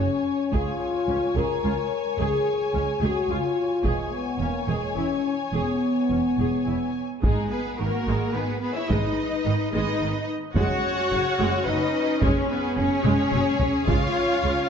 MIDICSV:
0, 0, Header, 1, 8, 480
1, 0, Start_track
1, 0, Key_signature, 5, "minor"
1, 0, Tempo, 551978
1, 464, Time_signature, 3, 2, 24, 8
1, 3827, Tempo, 564972
1, 6707, Tempo, 552995
1, 12696, End_track
2, 0, Start_track
2, 0, Title_t, "Violin section"
2, 0, Program_c, 0, 48
2, 0, Note_on_c, 0, 80, 42
2, 449, Note_off_c, 0, 80, 0
2, 459, Note_on_c, 0, 80, 52
2, 3310, Note_off_c, 0, 80, 0
2, 3357, Note_on_c, 0, 80, 52
2, 6032, Note_off_c, 0, 80, 0
2, 6235, Note_on_c, 0, 68, 60
2, 6456, Note_off_c, 0, 68, 0
2, 6471, Note_on_c, 0, 71, 60
2, 6703, Note_off_c, 0, 71, 0
2, 6709, Note_on_c, 0, 70, 66
2, 7175, Note_on_c, 0, 71, 60
2, 7178, Note_off_c, 0, 70, 0
2, 7407, Note_off_c, 0, 71, 0
2, 7418, Note_on_c, 0, 71, 63
2, 7540, Note_off_c, 0, 71, 0
2, 7540, Note_on_c, 0, 76, 68
2, 7664, Note_off_c, 0, 76, 0
2, 7664, Note_on_c, 0, 75, 62
2, 8377, Note_off_c, 0, 75, 0
2, 8387, Note_on_c, 0, 75, 71
2, 8859, Note_off_c, 0, 75, 0
2, 9105, Note_on_c, 0, 78, 90
2, 10036, Note_off_c, 0, 78, 0
2, 10065, Note_on_c, 0, 75, 76
2, 10548, Note_off_c, 0, 75, 0
2, 10551, Note_on_c, 0, 73, 65
2, 10790, Note_off_c, 0, 73, 0
2, 10793, Note_on_c, 0, 71, 73
2, 11026, Note_on_c, 0, 73, 89
2, 11030, Note_off_c, 0, 71, 0
2, 11983, Note_off_c, 0, 73, 0
2, 11983, Note_on_c, 0, 77, 86
2, 12692, Note_off_c, 0, 77, 0
2, 12696, End_track
3, 0, Start_track
3, 0, Title_t, "Violin section"
3, 0, Program_c, 1, 48
3, 0, Note_on_c, 1, 73, 42
3, 424, Note_off_c, 1, 73, 0
3, 463, Note_on_c, 1, 73, 57
3, 3312, Note_off_c, 1, 73, 0
3, 3353, Note_on_c, 1, 73, 55
3, 6031, Note_off_c, 1, 73, 0
3, 6238, Note_on_c, 1, 63, 49
3, 6457, Note_off_c, 1, 63, 0
3, 6463, Note_on_c, 1, 68, 52
3, 6704, Note_off_c, 1, 68, 0
3, 6707, Note_on_c, 1, 66, 58
3, 7176, Note_on_c, 1, 68, 57
3, 7187, Note_off_c, 1, 66, 0
3, 7413, Note_off_c, 1, 68, 0
3, 7424, Note_on_c, 1, 68, 52
3, 7536, Note_on_c, 1, 73, 58
3, 7543, Note_off_c, 1, 68, 0
3, 7648, Note_on_c, 1, 71, 55
3, 7662, Note_off_c, 1, 73, 0
3, 8376, Note_off_c, 1, 71, 0
3, 8386, Note_on_c, 1, 71, 59
3, 8859, Note_off_c, 1, 71, 0
3, 9103, Note_on_c, 1, 73, 74
3, 10035, Note_off_c, 1, 73, 0
3, 10063, Note_on_c, 1, 71, 76
3, 10547, Note_off_c, 1, 71, 0
3, 10552, Note_on_c, 1, 68, 55
3, 10776, Note_off_c, 1, 68, 0
3, 10787, Note_on_c, 1, 68, 62
3, 11016, Note_off_c, 1, 68, 0
3, 11026, Note_on_c, 1, 68, 82
3, 11964, Note_off_c, 1, 68, 0
3, 11982, Note_on_c, 1, 73, 79
3, 12696, Note_off_c, 1, 73, 0
3, 12696, End_track
4, 0, Start_track
4, 0, Title_t, "French horn section"
4, 0, Program_c, 2, 60
4, 0, Note_on_c, 2, 61, 68
4, 465, Note_on_c, 2, 65, 82
4, 469, Note_off_c, 2, 61, 0
4, 1191, Note_off_c, 2, 65, 0
4, 1193, Note_on_c, 2, 70, 77
4, 1905, Note_on_c, 2, 68, 79
4, 1910, Note_off_c, 2, 70, 0
4, 2627, Note_off_c, 2, 68, 0
4, 2641, Note_on_c, 2, 66, 67
4, 2870, Note_off_c, 2, 66, 0
4, 2886, Note_on_c, 2, 65, 73
4, 3355, Note_on_c, 2, 56, 67
4, 3356, Note_off_c, 2, 65, 0
4, 3585, Note_on_c, 2, 59, 61
4, 3590, Note_off_c, 2, 56, 0
4, 3816, Note_on_c, 2, 58, 62
4, 3827, Note_off_c, 2, 59, 0
4, 4059, Note_off_c, 2, 58, 0
4, 4071, Note_on_c, 2, 56, 54
4, 4303, Note_on_c, 2, 61, 57
4, 4307, Note_off_c, 2, 56, 0
4, 4639, Note_off_c, 2, 61, 0
4, 4783, Note_on_c, 2, 59, 53
4, 5968, Note_off_c, 2, 59, 0
4, 6227, Note_on_c, 2, 56, 54
4, 6451, Note_off_c, 2, 56, 0
4, 6479, Note_on_c, 2, 59, 52
4, 6712, Note_off_c, 2, 59, 0
4, 6712, Note_on_c, 2, 58, 60
4, 7189, Note_off_c, 2, 58, 0
4, 7195, Note_on_c, 2, 59, 58
4, 7414, Note_off_c, 2, 59, 0
4, 7424, Note_on_c, 2, 59, 51
4, 7544, Note_off_c, 2, 59, 0
4, 7554, Note_on_c, 2, 64, 51
4, 7669, Note_off_c, 2, 64, 0
4, 7672, Note_on_c, 2, 63, 59
4, 8385, Note_off_c, 2, 63, 0
4, 8396, Note_on_c, 2, 63, 60
4, 8864, Note_off_c, 2, 63, 0
4, 9104, Note_on_c, 2, 66, 76
4, 10035, Note_off_c, 2, 66, 0
4, 10076, Note_on_c, 2, 63, 73
4, 10554, Note_off_c, 2, 63, 0
4, 10554, Note_on_c, 2, 61, 66
4, 10787, Note_off_c, 2, 61, 0
4, 10808, Note_on_c, 2, 59, 69
4, 11038, Note_off_c, 2, 59, 0
4, 11044, Note_on_c, 2, 61, 85
4, 11984, Note_on_c, 2, 65, 81
4, 11992, Note_off_c, 2, 61, 0
4, 12693, Note_off_c, 2, 65, 0
4, 12696, End_track
5, 0, Start_track
5, 0, Title_t, "Viola section"
5, 0, Program_c, 3, 48
5, 456, Note_on_c, 3, 68, 59
5, 683, Note_off_c, 3, 68, 0
5, 949, Note_on_c, 3, 61, 48
5, 1018, Note_off_c, 3, 61, 0
5, 1184, Note_on_c, 3, 68, 57
5, 1410, Note_off_c, 3, 68, 0
5, 1426, Note_on_c, 3, 65, 45
5, 1496, Note_off_c, 3, 65, 0
5, 1904, Note_on_c, 3, 68, 63
5, 2130, Note_off_c, 3, 68, 0
5, 2383, Note_on_c, 3, 61, 47
5, 2453, Note_off_c, 3, 61, 0
5, 2623, Note_on_c, 3, 68, 61
5, 2848, Note_off_c, 3, 68, 0
5, 2868, Note_on_c, 3, 65, 46
5, 2937, Note_off_c, 3, 65, 0
5, 3347, Note_on_c, 3, 68, 59
5, 3570, Note_off_c, 3, 68, 0
5, 3829, Note_on_c, 3, 61, 40
5, 3897, Note_off_c, 3, 61, 0
5, 4068, Note_on_c, 3, 68, 49
5, 4289, Note_off_c, 3, 68, 0
5, 4307, Note_on_c, 3, 64, 41
5, 4375, Note_off_c, 3, 64, 0
5, 4785, Note_on_c, 3, 68, 46
5, 5012, Note_off_c, 3, 68, 0
5, 5276, Note_on_c, 3, 61, 26
5, 5343, Note_off_c, 3, 61, 0
5, 5521, Note_on_c, 3, 68, 37
5, 5741, Note_off_c, 3, 68, 0
5, 5755, Note_on_c, 3, 64, 31
5, 5823, Note_off_c, 3, 64, 0
5, 6231, Note_on_c, 3, 56, 57
5, 6454, Note_off_c, 3, 56, 0
5, 6715, Note_on_c, 3, 51, 40
5, 6784, Note_off_c, 3, 51, 0
5, 6947, Note_on_c, 3, 56, 59
5, 7170, Note_off_c, 3, 56, 0
5, 7182, Note_on_c, 3, 51, 45
5, 7251, Note_off_c, 3, 51, 0
5, 7669, Note_on_c, 3, 56, 57
5, 7893, Note_off_c, 3, 56, 0
5, 8153, Note_on_c, 3, 51, 49
5, 8223, Note_off_c, 3, 51, 0
5, 8386, Note_on_c, 3, 56, 63
5, 8612, Note_off_c, 3, 56, 0
5, 8626, Note_on_c, 3, 51, 43
5, 8696, Note_off_c, 3, 51, 0
5, 9110, Note_on_c, 3, 56, 71
5, 9110, Note_on_c, 3, 61, 57
5, 9335, Note_off_c, 3, 56, 0
5, 9595, Note_on_c, 3, 49, 47
5, 9664, Note_off_c, 3, 49, 0
5, 9837, Note_on_c, 3, 56, 69
5, 10059, Note_off_c, 3, 56, 0
5, 10081, Note_on_c, 3, 54, 48
5, 10150, Note_off_c, 3, 54, 0
5, 10557, Note_on_c, 3, 56, 70
5, 10777, Note_off_c, 3, 56, 0
5, 11037, Note_on_c, 3, 49, 47
5, 11107, Note_off_c, 3, 49, 0
5, 11271, Note_on_c, 3, 56, 77
5, 11492, Note_off_c, 3, 56, 0
5, 11515, Note_on_c, 3, 54, 54
5, 11585, Note_off_c, 3, 54, 0
5, 11981, Note_off_c, 3, 61, 0
5, 11991, Note_on_c, 3, 56, 69
5, 11991, Note_on_c, 3, 61, 64
5, 12211, Note_off_c, 3, 56, 0
5, 12477, Note_on_c, 3, 49, 48
5, 12547, Note_off_c, 3, 49, 0
5, 12696, Note_off_c, 3, 61, 0
5, 12696, End_track
6, 0, Start_track
6, 0, Title_t, "Cello section"
6, 0, Program_c, 4, 48
6, 459, Note_on_c, 4, 37, 59
6, 529, Note_off_c, 4, 37, 0
6, 940, Note_on_c, 4, 37, 44
6, 1010, Note_off_c, 4, 37, 0
6, 1183, Note_on_c, 4, 37, 62
6, 1252, Note_off_c, 4, 37, 0
6, 1422, Note_on_c, 4, 37, 47
6, 1492, Note_off_c, 4, 37, 0
6, 1895, Note_on_c, 4, 37, 59
6, 1964, Note_off_c, 4, 37, 0
6, 2379, Note_on_c, 4, 37, 42
6, 2449, Note_off_c, 4, 37, 0
6, 2615, Note_on_c, 4, 37, 61
6, 2684, Note_off_c, 4, 37, 0
6, 2856, Note_on_c, 4, 37, 46
6, 2925, Note_off_c, 4, 37, 0
6, 3333, Note_on_c, 4, 40, 59
6, 3402, Note_off_c, 4, 40, 0
6, 3813, Note_on_c, 4, 40, 38
6, 3881, Note_off_c, 4, 40, 0
6, 4058, Note_on_c, 4, 40, 47
6, 4126, Note_off_c, 4, 40, 0
6, 4299, Note_on_c, 4, 40, 34
6, 4367, Note_off_c, 4, 40, 0
6, 4784, Note_on_c, 4, 40, 42
6, 4852, Note_off_c, 4, 40, 0
6, 5273, Note_on_c, 4, 40, 33
6, 5341, Note_off_c, 4, 40, 0
6, 5517, Note_on_c, 4, 40, 39
6, 5585, Note_off_c, 4, 40, 0
6, 5760, Note_on_c, 4, 40, 27
6, 5828, Note_off_c, 4, 40, 0
6, 6236, Note_on_c, 4, 56, 46
6, 6456, Note_off_c, 4, 56, 0
6, 6473, Note_on_c, 4, 59, 48
6, 6709, Note_off_c, 4, 59, 0
6, 6713, Note_on_c, 4, 58, 52
6, 7180, Note_off_c, 4, 58, 0
6, 7187, Note_on_c, 4, 59, 53
6, 7414, Note_off_c, 4, 59, 0
6, 7424, Note_on_c, 4, 59, 52
6, 7543, Note_off_c, 4, 59, 0
6, 7548, Note_on_c, 4, 64, 53
6, 7668, Note_off_c, 4, 64, 0
6, 7668, Note_on_c, 4, 63, 54
6, 8380, Note_off_c, 4, 63, 0
6, 8390, Note_on_c, 4, 63, 53
6, 8861, Note_off_c, 4, 63, 0
6, 9117, Note_on_c, 4, 66, 67
6, 10042, Note_off_c, 4, 66, 0
6, 10077, Note_on_c, 4, 63, 72
6, 10544, Note_off_c, 4, 63, 0
6, 10552, Note_on_c, 4, 61, 60
6, 10791, Note_off_c, 4, 61, 0
6, 10794, Note_on_c, 4, 59, 58
6, 11026, Note_off_c, 4, 59, 0
6, 11029, Note_on_c, 4, 61, 68
6, 11982, Note_on_c, 4, 65, 76
6, 11985, Note_off_c, 4, 61, 0
6, 12692, Note_off_c, 4, 65, 0
6, 12696, End_track
7, 0, Start_track
7, 0, Title_t, "Double bass section"
7, 0, Program_c, 5, 48
7, 461, Note_on_c, 5, 37, 59
7, 531, Note_off_c, 5, 37, 0
7, 940, Note_on_c, 5, 37, 42
7, 1009, Note_off_c, 5, 37, 0
7, 1183, Note_on_c, 5, 37, 57
7, 1252, Note_off_c, 5, 37, 0
7, 1428, Note_on_c, 5, 37, 43
7, 1497, Note_off_c, 5, 37, 0
7, 1908, Note_on_c, 5, 37, 62
7, 1978, Note_off_c, 5, 37, 0
7, 2387, Note_on_c, 5, 37, 48
7, 2457, Note_off_c, 5, 37, 0
7, 2626, Note_on_c, 5, 37, 59
7, 2696, Note_off_c, 5, 37, 0
7, 2865, Note_on_c, 5, 37, 45
7, 2935, Note_off_c, 5, 37, 0
7, 3345, Note_on_c, 5, 28, 58
7, 3415, Note_off_c, 5, 28, 0
7, 3824, Note_on_c, 5, 28, 40
7, 3892, Note_off_c, 5, 28, 0
7, 4065, Note_on_c, 5, 28, 50
7, 4133, Note_off_c, 5, 28, 0
7, 4302, Note_on_c, 5, 28, 33
7, 4370, Note_off_c, 5, 28, 0
7, 4786, Note_on_c, 5, 28, 43
7, 4854, Note_off_c, 5, 28, 0
7, 5272, Note_on_c, 5, 28, 30
7, 5340, Note_off_c, 5, 28, 0
7, 5516, Note_on_c, 5, 28, 40
7, 5584, Note_off_c, 5, 28, 0
7, 5756, Note_on_c, 5, 28, 30
7, 5824, Note_off_c, 5, 28, 0
7, 6238, Note_on_c, 5, 32, 50
7, 6306, Note_off_c, 5, 32, 0
7, 6715, Note_on_c, 5, 32, 39
7, 6785, Note_off_c, 5, 32, 0
7, 6948, Note_on_c, 5, 32, 56
7, 7017, Note_off_c, 5, 32, 0
7, 7194, Note_on_c, 5, 32, 41
7, 7264, Note_off_c, 5, 32, 0
7, 7677, Note_on_c, 5, 32, 51
7, 7747, Note_off_c, 5, 32, 0
7, 8157, Note_on_c, 5, 32, 42
7, 8227, Note_off_c, 5, 32, 0
7, 8399, Note_on_c, 5, 32, 57
7, 8468, Note_off_c, 5, 32, 0
7, 8639, Note_on_c, 5, 32, 40
7, 8709, Note_off_c, 5, 32, 0
7, 9112, Note_on_c, 5, 30, 63
7, 9181, Note_off_c, 5, 30, 0
7, 9597, Note_on_c, 5, 30, 46
7, 9666, Note_off_c, 5, 30, 0
7, 9840, Note_on_c, 5, 30, 61
7, 9910, Note_off_c, 5, 30, 0
7, 10077, Note_on_c, 5, 30, 44
7, 10146, Note_off_c, 5, 30, 0
7, 10557, Note_on_c, 5, 30, 64
7, 10626, Note_off_c, 5, 30, 0
7, 11036, Note_on_c, 5, 30, 52
7, 11105, Note_off_c, 5, 30, 0
7, 11271, Note_on_c, 5, 30, 63
7, 11340, Note_off_c, 5, 30, 0
7, 11511, Note_on_c, 5, 30, 52
7, 11580, Note_off_c, 5, 30, 0
7, 11993, Note_on_c, 5, 37, 72
7, 12062, Note_off_c, 5, 37, 0
7, 12472, Note_on_c, 5, 37, 47
7, 12542, Note_off_c, 5, 37, 0
7, 12696, End_track
8, 0, Start_track
8, 0, Title_t, "Taiko and cinematic ensemble drums"
8, 454, Note_on_c, 9, 41, 53
8, 541, Note_off_c, 9, 41, 0
8, 1182, Note_on_c, 9, 41, 34
8, 1269, Note_off_c, 9, 41, 0
8, 3344, Note_on_c, 9, 41, 54
8, 3431, Note_off_c, 9, 41, 0
8, 6235, Note_on_c, 9, 41, 80
8, 6320, Note_off_c, 9, 41, 0
8, 7667, Note_on_c, 9, 41, 84
8, 7754, Note_off_c, 9, 41, 0
8, 9106, Note_on_c, 9, 41, 83
8, 9193, Note_off_c, 9, 41, 0
8, 10551, Note_on_c, 9, 41, 88
8, 10638, Note_off_c, 9, 41, 0
8, 11264, Note_on_c, 9, 47, 73
8, 11351, Note_off_c, 9, 47, 0
8, 11504, Note_on_c, 9, 47, 69
8, 11591, Note_off_c, 9, 47, 0
8, 11745, Note_on_c, 9, 43, 88
8, 11832, Note_off_c, 9, 43, 0
8, 11988, Note_on_c, 9, 41, 96
8, 12075, Note_off_c, 9, 41, 0
8, 12696, End_track
0, 0, End_of_file